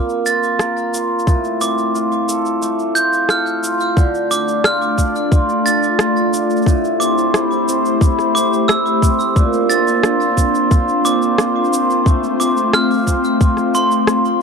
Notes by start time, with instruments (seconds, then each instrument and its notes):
Already playing: hammered dulcimer A#2 A3 A#3 C4 F4 A#4
0.09 shaker
0.26 hammered dulcimer F4, glockenspiel A6, shaker
0.43 shaker
0.59 hammered dulcimer A#4, cross-stick, shaker
0.77 shaker
0.94 hammered dulcimer F4, shaker
1.19 shaker
1.27 hammered dulcimer A2, kick, shaker
1.44 shaker
1.61 hammered dulcimer C4, glockenspiel D6, shaker
1.78 shaker
1.95 hammered dulcimer F4, shaker
2.12 shaker
2.28 hammered dulcimer A4, shaker
2.46 shaker
2.62 hammered dulcimer A3, shaker
2.79 shaker
2.95 hammered dulcimer F4, glockenspiel G6, shaker
3.13 shaker
3.29 hammered dulcimer A4, glockenspiel F6, cross-stick, shaker
3.47 shaker
3.63 hammered dulcimer F4, shaker
3.80 shaker
3.96 hammered dulcimer D3, ambient pad A3 D4 F4 D5, kick, shaker
4.15 shaker
4.31 hammered dulcimer D4, glockenspiel D6, shaker
4.48 shaker
4.64 hammered dulcimer F4, glockenspiel F6, cross-stick, shaker
4.82 shaker
4.98 hammered dulcimer D4, kick, shaker
5.16 shaker
5.32 hammered dulcimer F4, kick, shaker
5.49 shaker
5.65 hammered dulcimer D4, glockenspiel A6, shaker
5.83 shaker
5.99 hammered dulcimer F4, cross-stick, shaker
6.17 shaker
6.33 hammered dulcimer D4, shaker
6.50 shaker
6.56 shaker
6.62 ambient pad E4 G4 C5, shaker
6.66 hammered dulcimer A2, kick, shaker
6.85 shaker
7.00 hammered dulcimer C4, glockenspiel D6, shaker
7.18 shaker
7.34 hammered dulcimer E4, cross-stick, shaker
7.52 shaker
7.68 hammered dulcimer C4, shaker
7.85 shaker
8.01 hammered dulcimer E4, kick, shaker
8.19 cross-stick, shaker
8.35 hammered dulcimer C4, glockenspiel D6, shaker
8.53 shaker
8.68 hammered dulcimer E4, glockenspiel E6, cross-stick, shaker
8.86 shaker
9.02 hammered dulcimer C4, kick, shaker
9.20 shaker
9.36 hammered dulcimer A#2, ambient pad A#3 D4 F4 C5, kick, shaker
9.53 shaker
9.70 hammered dulcimer C4, glockenspiel A6, shaker
9.87 shaker
10.03 hammered dulcimer F4, cross-stick, shaker
10.21 shaker
10.37 hammered dulcimer C4, kick, shaker
10.55 shaker
10.71 hammered dulcimer F4, kick, shaker
10.89 shaker
11.05 hammered dulcimer C4, glockenspiel D6, shaker
11.22 shaker
11.38 hammered dulcimer F4, cross-stick, shaker
11.64 shaker
11.73 hammered dulcimer C4, shaker
11.90 shaker
12.06 ambient pad A3 C4, hammered dulcimer A3, kick, shaker
12.24 shaker
12.40 hammered dulcimer C4, glockenspiel D6, shaker
12.57 shaker
12.73 hammered dulcimer F4, glockenspiel F6, cross-stick, shaker
12.91 shaker
12.93 shaker
12.96 shaker
13.01 shaker
13.03 shaker
13.05 hammered dulcimer C4, kick, shaker
13.07 shaker
13.24 shaker
13.41 hammered dulcimer F4, kick, shaker
13.57 cross-stick, shaker
13.75 hammered dulcimer C4, glockenspiel C6, shaker
13.91 shaker
14.07 hammered dulcimer F4, cross-stick, shaker
14.25 shaker